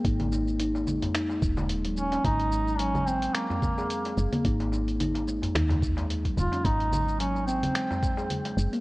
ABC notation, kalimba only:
X:1
M:4/4
L:1/16
Q:"Swing 16ths" 1/4=109
K:Abmix
V:1 name="Kalimba" clef=bass
E z E z E2 A,2 E A, z A,2 G, z D | A, z A, z G, z C2 A, A,2 A z A,2 B, | E z E z E2 A,2 E A, z A,2 G, z D | A, z A, z G, z C2 A, A,2 A z A,2 B, |]